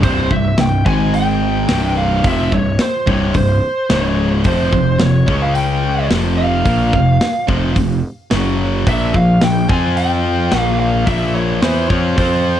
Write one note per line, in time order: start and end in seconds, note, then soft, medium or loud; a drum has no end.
0.03 0.29 C1 medium
0.03 0.30 C2 medium
0.03 0.30 G2 medium
0.03 0.31 C3 medium
0.03 0.32 C5 loud
0.03 kick medium
0.03 open hi-hat medium
0.31 0.57 C1 medium
0.31 0.53 C2 medium
0.31 0.53 G2 medium
0.31 0.60 E5 medium
0.31 kick medium
0.58 0.85 C1 medium
0.58 0.81 C2 medium
0.58 0.81 G2 medium
0.58 0.85 G5 medium
0.58 snare loud
0.58 open hi-hat medium
0.86 1.65 G#1 loud
0.86 1.68 G#2 medium
0.86 1.69 D#3 medium
0.86 1.69 G#3 medium
0.86 1.14 G#5 loud
0.86 kick loud
1.14 1.93 G5 loud
1.14 open hi-hat medium
1.69 2.21 C1 medium
1.69 2.24 C2 medium
1.69 2.24 G2 medium
1.69 2.24 C3 loud
1.69 snare loud
1.69 open hi-hat medium
1.97 2.26 F5 medium
2.24 2.50 F1 medium
2.24 2.52 F2 medium
2.24 2.52 C3 medium
2.24 2.52 F3 loud
2.24 2.54 E5 loud
2.24 kick loud
2.24 open hi-hat medium
2.52 2.78 C1 medium
2.52 2.75 C2 medium
2.52 2.75 G2 medium
2.52 2.81 C#5 medium
2.52 kick medium
2.79 3.09 C5 medium
2.79 snare loud
2.79 open hi-hat medium
3.07 3.33 C1 loud
3.07 3.34 C2 medium
3.07 3.35 G2 medium
3.07 3.35 C3 medium
3.07 3.35 C#5 medium
3.07 kick loud
3.34 3.61 C1 medium
3.34 3.57 C2 medium
3.34 3.58 G2 medium
3.34 3.87 C5 medium
3.34 kick medium
3.34 open hi-hat medium
3.90 4.42 C#1 medium
3.90 4.44 C#2 medium
3.90 4.45 G#2 medium
3.90 4.45 C#3 loud
3.90 4.29 C#5 medium
3.90 snare loud
3.90 open hi-hat medium
4.44 4.71 F1 medium
4.44 4.72 F2 medium
4.44 4.73 C3 loud
4.44 4.73 F3 loud
4.44 4.98 C5 medium
4.44 kick medium
4.44 open hi-hat medium
4.73 4.99 F1 medium
4.73 4.95 F2 medium
4.73 4.96 C3 medium
4.73 kick medium
5.00 5.27 F1 medium
5.00 5.23 F2 medium
5.00 5.23 C3 medium
5.00 5.44 C#5 medium
5.00 snare loud
5.00 open hi-hat medium
5.28 6.07 C#2 loud
5.28 6.10 C#3 medium
5.28 6.11 G#3 medium
5.28 6.11 C#4 medium
5.28 kick loud
5.42 5.55 F5 medium
5.55 6.07 G5 medium
5.55 open hi-hat medium
6.10 6.62 F1 medium
6.10 6.65 F2 loud
6.10 6.65 C3 medium
6.10 6.66 F3 loud
6.10 snare loud
6.10 open hi-hat medium
6.37 7.44 F5 medium
6.65 6.92 A#1 medium
6.65 6.93 A#2 medium
6.65 6.94 F3 medium
6.65 6.94 A#3 loud
6.65 kick loud
6.65 open hi-hat medium
6.93 7.19 F1 medium
6.93 7.16 F2 medium
6.93 7.16 C3 medium
6.93 kick medium
7.21 snare loud
7.21 open hi-hat medium
7.48 7.74 F1 medium
7.48 7.75 F2 medium
7.48 7.76 C3 medium
7.48 7.76 F3 medium
7.48 kick loud
7.76 8.02 F1 medium
7.76 7.99 F2 medium
7.76 7.99 C3 medium
7.76 kick medium
7.76 open hi-hat medium
8.31 8.83 F#1 medium
8.31 8.86 F#2 medium
8.31 8.86 C#3 medium
8.31 8.87 F#3 loud
8.31 snare loud
8.31 open hi-hat medium
8.86 9.12 A#1 medium
8.86 9.13 A#2 loud
8.86 9.14 F3 loud
8.86 9.14 A#3 loud
8.86 9.16 E5 loud
8.86 kick loud
8.86 open hi-hat medium
9.14 9.40 A#1 medium
9.14 9.37 A#2 medium
9.14 9.37 F3 medium
9.14 9.43 F5 medium
9.14 kick medium
9.41 9.68 A#1 medium
9.41 9.64 A#2 medium
9.41 9.64 F3 medium
9.41 9.69 G5 loud
9.41 snare loud
9.41 open hi-hat medium
9.69 10.48 F2 loud
9.69 10.51 F3 medium
9.69 10.52 C4 medium
9.69 10.52 F4 medium
9.69 9.97 G#5 loud
9.69 kick loud
9.97 10.59 G5 loud
9.97 open hi-hat soft
10.52 11.03 A#1 medium
10.52 11.06 A#2 medium
10.52 11.07 F3 medium
10.52 11.07 A#3 medium
10.52 snare loud
10.52 open hi-hat medium
10.59 10.79 F5 loud
10.80 11.08 F5 medium
11.07 11.59 A#1 medium
11.07 11.62 A#2 medium
11.07 11.62 F3 loud
11.07 11.62 A#3 medium
11.07 11.34 E5 loud
11.07 kick loud
11.07 open hi-hat medium
11.35 11.63 C#5 medium
11.62 11.88 E2 medium
11.62 11.89 E3 medium
11.62 11.90 B3 medium
11.62 11.90 E4 loud
11.62 11.89 C5 medium
11.62 snare loud
11.62 open hi-hat medium
11.89 12.16 F2 medium
11.89 12.17 F3 medium
11.89 12.18 C4 medium
11.89 12.18 F4 medium
11.89 12.17 C#5 medium
11.89 kick loud
12.17 12.60 F2 medium
12.17 12.60 F3 medium
12.17 12.60 C4 medium
12.17 12.60 F4 loud
12.17 12.60 C5 loud
12.17 kick loud
12.17 open hi-hat medium